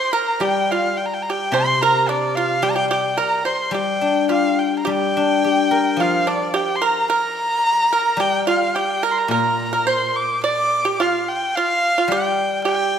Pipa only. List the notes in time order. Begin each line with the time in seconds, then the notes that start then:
Already playing: C5
0.13 A#4
0.41 G4
0.72 F4
1.30 G4
1.53 C5
1.83 A#4
2.09 D4
2.37 F4
2.63 G4
2.76 G4
2.91 G4
3.18 A#4
3.45 C5
3.74 G4
4.29 F4
4.85 G4
6.00 F4
6.27 D4
6.54 G4
6.82 A#4
7.10 A#4
7.93 A#4
8.20 G4
8.47 F4
8.76 G4
9.03 A#4
9.31 A#4
9.73 A#4
9.87 C5
10.44 D5
10.85 G4
11.00 F4
11.57 F4
11.98 F4
12.12 G4
12.65 G4